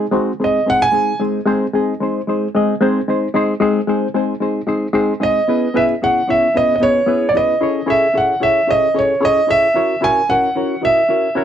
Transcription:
0.11 G#3 C4 D#4 F#4
0.40 G#3 C4 D#4 G#4
0.44 D#5
0.66 G#3 C4 D#4 G#4 F#5
0.82 G#5
0.92 G#3 C4 D#4 G#4
1.19 G#3 C4 D#4 G#4 C5
1.46 G#3 C4 D#4 G#4 C5
1.73 G#3 C4 D#4 G#4 D#5
2.01 G#3 C4 D#4 G#4 C5
2.28 G#3 C4 D#4 G#4 C5
2.55 G#3 C4 D#4 G#4 D#5
2.81 G#3 C4 D#4 G#4 C5
3.08 G#3 C4 D#4 G#4 C5
3.34 G#3 C4 D#4 G#4 C5
3.60 G#3 C4 D#4 G#4 C5
3.87 G#3 C4 D#4 G#4 C5
4.14 G#3 C4 D#4 G#4 C5
4.40 G#3 C4 D#4 G#4 C5
4.67 G#3 C4 D#4 G#4 C5
4.93 G#3 C4 D#4 G#4 C5
5.20 G#3 C4 D#4 G#4 D#5
5.48 B3 C#4 E4 G#4 B4
5.74 B3 C#4 E4 G#4 B4 E5
6.02 B3 C#4 E4 G#4 C#5 F#5
6.28 B3 C#4 E4 G#4 C#5 E5
6.54 B3 C#4 E4 G#4 B4 D#5
6.76 D#5
6.80 B3 C#4 E4 G#4 B4 C#5
7.06 B3 C#4 E4 G#4 B4
7.29 D5
7.33 B3 C#4 E4 G#4 B4 D#5
7.61 C#4 E4 G#4 A4 C#5
7.86 C#4 E4 G#4 A4 C#5
7.90 E5
8.13 C#4 E4 G#4 A4 C#5
8.18 F#5
8.40 C#4 E4 G#4 A4 C#5 E5
8.67 C#4 E4 G#4 A4 C#5 D#5
8.94 C#4 E4 G#4 A4 C#5
8.99 C#5
9.20 C#4 E4 G#4 A4 C#5
9.25 D#5
9.47 C#4 E4 G#4 A4 C#5 E5
9.74 C#4 E4 F#4 A#4 C#5
10.01 C#4 E4 F#4 A#4 C#5 G#5
10.29 C#4 E4 F#4 A#4 C#5 F#5
10.55 C#4 E4 F#4 A#4 C#5
10.81 C#4 E4 F#4 A#4 D#5 E5
11.08 C#4 E4 F#4 A#4 C#5
11.35 C#4 E4 F#4 A#4 C#5

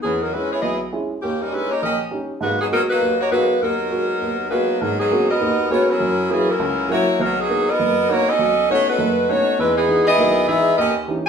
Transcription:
0.03 E2 E3 B3 C#4 G#4
0.22 F#3 B3 D#4 A#4
0.34 G#3 C#4 E4 B4
0.52 B3 E4 G#4 C#5
0.61 B1 B3 E4 G#4 D#5
0.93 G#3 C#4 E4
1.22 D#2 D#3 A#3 C#4 G4
1.42 G3 C#4 D#4 A#4
1.53 G3 G#3 C#4 D#4 E4 B4
1.71 A#3 D#4 G4 C#5
1.82 A#1 C#4 G4 A#4 D#5
2.11 G3 C#4 D#4
2.41 G#2 D#3 A#3 B3 F#4
2.61 F#3 B3 D#4 G#4
2.70 F#3 G#3 A#3 B3 D#4 F#4 A#4
2.90 F#3 A#3 D#4 B4
3.01 D#2
3.20 A#3 D#4 F#4 C#5
3.31 F#3 G#3 A#3 B3 D#4 F#4 B4
3.61 D#2 F#3 B3 D#4 A#4
3.91 G#3 A#3 B3 F#4
4.22 D#2
4.50 F#3 G#3 A#3 B3 D#4 F#4 B4
4.81 G#2 F#3 B3 D#4 A#4
4.99 F#3 B3 D#4 G#4
5.11 G#3 A#3 B3 C#4 F#4
5.30 B3 F#4 A#4 D#5
5.41 D#2 D#3
5.70 G#3 A#3 B3 C#4 F#4 A#4 C#5
5.90 F#3 C#4 E4 A#4
6.00 F#2
6.29 E3 F#3 A#3 C#4 E4 G#4
6.50 F#3 C#4 E4 A#4
6.59 C#2 C#3
6.89 F#3 A#3 E4 F#4 C#5
7.20 B1 F#3 B3 D#4 A#4
7.40 F#3 B3 D#4 G#4
7.49 A#3 B3 D#4
7.70 B3 F#4 A#4 D#5
7.80 F#1
8.09 A#3 B3 D#4 F#4 C#5
8.29 C#4 F#4 A4 D#5
8.39 B1
8.69 A3 B3 C#4 D#4 F#4 C#5
8.89 A3 D#4 F#4 B4
8.99 F#1
9.29 A3 B3 C#4 D#4 F#4 C#5
9.59 E2 G#3 D#4 E4 B4
9.77 E3 B3 D#4 G#4
9.89 E3 G#3 D#4
10.07 B3 E4 G#4 D#5
10.18 B1 D#3
10.47 E3 G#3 B3 D#4 G#4 E5
10.78 D#2 C#4 G4 A#4 D#5
11.08 E3 G3 C#4 D#4

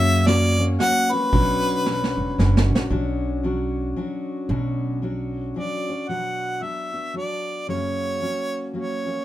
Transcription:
Already playing: F#2 C#3 F#3 A#3 C#4 F#4 E5
0.26 F#3 A#3 C#4 F#4 D5, snare, ride
0.58 F#3 A#3 C#4 F#4
0.79 F#3 A#3 C#4 F#4 F#5, snare, ride
1.12 F#3 A#3 C#4 F#4 B4
1.32 B1 B2 F#3 C#4 D4 F#4, kick, ride
1.86 F#3 C#4 D4 F#4, snare
2.04 snare
2.17 E1
2.38 F#1 F#3 C#4 D4 F#4, snare
2.57 snare
2.71 A#1
2.75 snare
2.90 B1 B2 F#3 C#4 D4 F#4
3.43 F#3 C#4 D4 F#4
3.96 F#3 C#4 D4 F#4
4.49 B1 B2 F#3 C#4 D4 F#4
5.02 F#3 C#4 D4 F#4
5.56 F#3 C#4 D4 F#4 D5
5.88 C#4 D4 F#4
6.08 B2 F#3 B3 D4 F#4 F#5
6.61 F#3 B3 D4 F#4 E5
6.92 B3 D4 F#4
7.14 F#3 B3 D4 F#4 D5
7.68 F#2 C#3 F#3 A#3 C#4 F#4 C#5
8.21 F#3 A#3 C#4 F#4
8.73 F#3 A#3 C#4 F#4 C#5
9.05 F#3 A#3 C#4 F#4

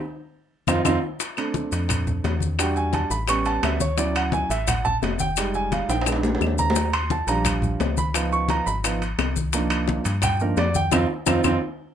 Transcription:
0.67 F2 C4 D#4 F4, high bongo, high conga, high timbale, claves, maracas
0.85 F2 C4 D#4 F4, high bongo, high conga, high timbale, claves, maracas
1.19 high bongo, high conga, high timbale, maracas
1.37 A3 C4 D4, high bongo, high conga, high timbale, claves, maracas
1.54 high bongo, high conga, maracas
1.71 F2, high bongo, high conga, high timbale, maracas
1.89 high bongo, high conga, low conga, high timbale, claves, maracas
2.07 high conga, low conga, maracas
2.24 E2, high bongo, low bongo, high conga, high timbale, low timbale, maracas
2.40 high bongo, high conga, maracas
2.59 G3 D4 F#4 G5, high bongo, high timbale, claves, maracas
2.76 G#5, high bongo, high conga, maracas
2.93 A5, high bongo, high conga, high timbale, maracas
3.10 A1 B5, high bongo, high conga, maracas
3.28 G3 B3 C#4 C#6, high bongo, high conga, high timbale, claves, maracas
3.45 A5, high conga, high timbale, maracas
3.63 D2 E5, high bongo, low bongo, high conga, high timbale, low timbale, claves, maracas
3.80 C#5, high bongo, high conga, maracas
3.97 F#3 C#4 E4 D5, high bongo, high conga, high timbale, maracas
4.15 F#5, high bongo, high conga, high timbale, claves, maracas
4.32 G#5, high bongo, high conga, maracas
4.50 A1 E5, high bongo, high conga, high timbale, maracas
4.67 F#5, high bongo, high conga, low conga, high timbale, claves, maracas
4.85 A5, high conga, low conga, maracas
5.02 F1, high bongo, low bongo, high conga, high timbale, low timbale, maracas
5.19 G5, high bongo, high conga, maracas
5.36 G3 G#3 D#4, high bongo, high conga, high timbale, claves, maracas
5.54 G#5, high bongo, high conga, maracas
5.72 F5, high bongo, high conga, high timbale, maracas
5.89 A#1 G5, high bongo, high conga, high timbale, maracas
6.01 high timbale
6.06 G#3 B3 D4, high bongo, high conga, claves, maracas
6.12 high timbale
6.23 high conga, low timbale, maracas
6.35 low timbale
6.41 D#2, high bongo, low bongo, high conga, claves, maracas
6.47 low timbale
6.58 A#5, high bongo, high conga, maracas
6.70 low timbale
6.75 high bongo, high conga, high timbale, maracas
6.93 C6, high bongo, high conga, high timbale, claves, maracas
7.10 A5, high bongo, high conga, maracas
7.27 A#1 F3 G3 D4 A#5, high bongo, high conga, high timbale, maracas
7.45 high bongo, high conga, low conga, high timbale, claves, maracas
7.62 high conga, low conga, maracas
7.80 C#2, high bongo, low bongo, high timbale, low timbale, maracas
7.97 B5, high bongo, high conga, maracas
8.14 F3 B3 D#4, high bongo, high timbale, claves, maracas
8.31 C#6, high bongo, high conga, maracas
8.49 A#5, high bongo, high conga, high timbale, maracas
8.66 G#1 B5, high bongo, high conga, maracas
8.84 F3 B3 D#4, high bongo, high conga, high timbale, claves, maracas
9.02 high conga, high timbale, maracas
9.18 C2, high bongo, low bongo, high conga, high timbale, claves, maracas
9.36 high bongo, high conga, maracas
9.53 F3 A#3 D4 D#4, high bongo, high conga, high timbale, maracas
9.70 high bongo, high conga, high timbale, claves, maracas
9.88 high bongo, high conga, maracas
10.04 G2, high bongo, high conga, high timbale, maracas
10.22 G5, high bongo, high conga, low conga, high timbale, claves, maracas
10.40 F3 A#3 D4 D#4 A#4, high conga, maracas
10.57 F2 D5, high bongo, low bongo, high conga, high timbale, low timbale, maracas
10.74 G5, high bongo, high conga, maracas
10.92 F2 C4 D#4 F4, high bongo, high conga, high timbale, claves, maracas
11.26 F2 C4 D#4 F4, high bongo, high conga, high timbale, claves, maracas
11.44 F2 C4 D#4 F4, high bongo, high conga, high timbale, claves, maracas

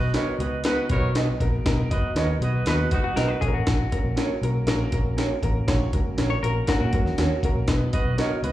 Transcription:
0.13 B3 D#4 F#4 A#4 B4 C#5 D#5, snare, closed hi-hat
0.26 muted fingered electric bass stroke
0.39 C#2 B3 D#4 F#4 B4 D#5, closed hi-hat
0.64 B3 D#4 F#4 B4, snare, closed hi-hat
0.90 B1 B3 D#4 F#4 A#4 B4 C#5, kick, closed hi-hat
1.01 B1
1.15 B3 D#4 F#4 B4 D#5, snare, closed hi-hat
1.40 A#1 B3 D#4 F#4 A#4, kick, closed hi-hat
1.65 B1 B3 D#4 F#4 A#4, kick, snare, closed hi-hat
1.91 F#1 B3 D#4 F#4 B4 D#5, kick, closed hi-hat
2.15 D#2 B3 D#4 F#4 A#4 B4 C#5 D#5, snare, closed hi-hat
2.40 B1 B3 D#4 F#4 B4 D#5, closed hi-hat
2.66 D#2 B3 D#4 F#4 B4, snare, closed hi-hat
2.91 C#2 B3 D#4 F#4 B4, kick, closed hi-hat
3.04 F#4
3.16 B1 B3 D#4 F#4 A#4 B4 D#5, snare, closed hi-hat
3.29 B4
3.41 A#1 A#3 C#4 F#4 G#4 A4, kick, closed hi-hat
3.47 A#4
3.54 A1 F#4
3.67 A#1, kick, snare, closed hi-hat
3.92 A#3 C#4 F#4 A#4, kick, closed hi-hat
4.04 A#1
4.16 A#3 C#4 F#4 A#4 C#5, snare, closed hi-hat
4.29 muted fingered electric bass stroke
4.42 B1 A#3 C#4 F#4 A#4, closed hi-hat
4.67 A#1 A#3 C#4 F#4 A#4, snare, closed hi-hat
4.92 A#1 A#3 C#4 F#4 A#4, kick, closed hi-hat
5.17 A#3 C#4 F#4 A#4 C#5, snare, closed hi-hat
5.42 A1 A#3 C#4 F#4 A#4, kick, closed hi-hat
5.67 A#1 A#3 C#4 F#4 C#5, kick, snare, closed hi-hat
5.93 C#2 A#3 C#4 F#4 A#4, kick, closed hi-hat
6.17 A#1 A#3 C#4 F#4 A#4 C#5, snare, closed hi-hat
6.30 C#5
6.43 A#1 A#3 C#4 F#4 A#4, closed hi-hat
6.67 A#3 C#4 F#4 A#4, kick, snare, closed hi-hat
6.80 A#2 F#4
6.93 F#2 A#3 C#4 F#4 A#4, kick, closed hi-hat
7.05 E2, snare
7.17 D#2 A#3 C#4 F#4 A#4 C#5, snare, closed hi-hat
7.43 C#2 A#3 C#4 F#4 A#4, kick, closed hi-hat
7.55 A#1
7.68 B1 B3 D#4 F#4 B4, kick, snare, closed hi-hat
7.93 B3 D#4 F#4 B4 D#5, kick, closed hi-hat
8.05 B1
8.17 B3 D#4 F#4 A#4 B4 C#5 D#5, snare, closed hi-hat
8.31 muted fingered electric bass stroke
8.43 C#2 B3 D#4 F#4 B4 D#5, closed hi-hat

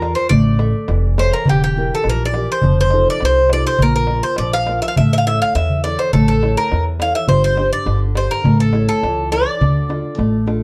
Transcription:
Already playing: E2 F4 A#4
0.02 A#4 D5 F5, darbuka tek
0.15 C5, darbuka tek
0.29 A1 A3 D5, darbuka dum
0.44 darbuka tek
0.59 A4 E5, darbuka tek
0.88 F1 E3, darbuka tek
1.18 A4 C5 C#5 E5, darbuka tek
1.31 A#4, darbuka tek
1.45 E1 E3 G4, darbuka dum
1.61 G4, darbuka tek
1.77 E4 G4 A#4
1.95 A4
2.04 A#1 E3, darbuka tek
2.09 A#4
2.25 D5
2.34 E4 G4 A#4, darbuka tek
2.52 C5
2.62 F1 F3, darbuka dum
2.77 C5, darbuka tek
2.91 D#4 F4 A4, darbuka tek
3.10 D5
3.20 C2 C3, darbuka tek
3.25 C5
3.50 D#4 F4 A4 D5, darbuka tek
3.67 C5
3.79 A#1 A#3 A#4, darbuka dum
3.94 A#4, darbuka tek
4.07 F4 A#4 D5, darbuka tek
4.23 C5
4.36 A#1 F3 D5, darbuka tek
4.53 F5
4.67 F4 A#4 D5, darbuka tek
4.82 E5
4.88 F5
4.96 A1 A3 E5, darbuka dum
5.12 E5, darbuka tek
5.18 F5
5.27 E4 A4 C#5 E5
5.41 F5, darbuka tek
5.55 E2 E3 E5, darbuka tek
5.69 darbuka dum
5.84 E4 A4 C#5 D5, darbuka tek
5.99 C5, darbuka tek
6.13 A1 A3 A4, darbuka dum
6.28 A4
6.43 E4 A4 C#5, darbuka tek
6.57 A#4
6.72 E2 E3, darbuka tek
7.00 E4 A4 C#5 F5, darbuka tek
7.15 E5
7.28 G1 G3 C5, darbuka dum
7.44 C5
7.57 D4 G4 C5, darbuka tek
7.73 D5
7.86 G1 D3, darbuka tek
8.15 D4 G4 C5, darbuka tek
8.31 A#4
8.44 A1 A3, darbuka dum
8.59 A4, darbuka tek
8.73 E4 A4 C#5, darbuka tek
8.89 A4
9.03 C#2 E3, darbuka tek
9.32 E4 A4 C#5 D5, darbuka tek
9.61 D2 D3, darbuka dum
9.76 darbuka tek
9.89 D4 F4 A4, darbuka tek
10.05 darbuka tek
10.17 A1 A3, darbuka tek
10.33 darbuka tek
10.46 D4 F4 A4, darbuka tek

